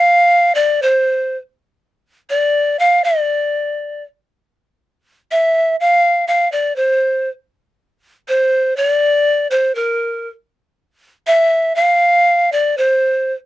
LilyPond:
\new Staff \with { instrumentName = "Pan flute" } { \time 6/8 \key d \minor \tempo 4. = 80 f''4 d''8 c''4 r8 | r4. d''4 f''8 | d''2 r4 | r4. e''4 f''8~ |
f''8 f''8 d''8 c''4 r8 | r4. c''4 d''8~ | d''4 c''8 bes'4 r8 | r4. e''4 f''8~ |
f''4 d''8 c''4 r8 | }